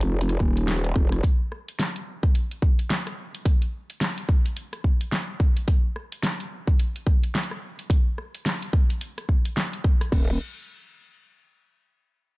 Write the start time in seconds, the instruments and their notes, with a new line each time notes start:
Already playing: wobble bass F1
0.01 closed hi-hat
0.21 closed hi-hat
0.29 cross-stick, closed hi-hat
0.40 wobble bass D#1, kick
0.57 closed hi-hat
0.68 snare, closed hi-hat
0.84 closed hi-hat
0.95 wobble bass F1, kick
1.12 cross-stick, closed hi-hat
1.23 kick, closed hi-hat
1.52 cross-stick
1.68 closed hi-hat
1.79 snare, closed hi-hat
1.96 closed hi-hat
2.23 kick
2.35 closed hi-hat
2.51 closed hi-hat
2.62 kick
2.79 closed hi-hat
2.90 snare, closed hi-hat
3.07 cross-stick, closed hi-hat
3.35 closed hi-hat
3.45 kick, closed hi-hat
3.62 closed hi-hat
3.90 closed hi-hat
4.01 snare, closed hi-hat
4.18 closed hi-hat
4.29 kick
4.46 closed hi-hat
4.57 closed hi-hat
4.73 cross-stick, closed hi-hat
4.84 kick
5.01 closed hi-hat
5.12 snare, closed hi-hat
5.40 kick
5.57 closed hi-hat
5.68 kick, closed hi-hat
5.96 cross-stick
6.12 closed hi-hat
6.23 snare, closed hi-hat
6.40 closed hi-hat
6.67 kick
6.80 closed hi-hat
6.96 closed hi-hat
7.07 kick
7.24 closed hi-hat
7.35 snare, closed hi-hat
7.43 closed hi-hat
7.51 cross-stick
7.79 closed hi-hat
7.90 kick, closed hi-hat
8.18 cross-stick
8.35 closed hi-hat
8.46 snare, closed hi-hat
8.62 closed hi-hat
8.73 kick
8.90 closed hi-hat
9.01 closed hi-hat
9.18 cross-stick, closed hi-hat
9.29 kick
9.45 closed hi-hat
9.57 snare, closed hi-hat
9.73 closed hi-hat
9.84 kick
10.01 cross-stick, closed hi-hat
10.12 wobble bass D#1, kick, crash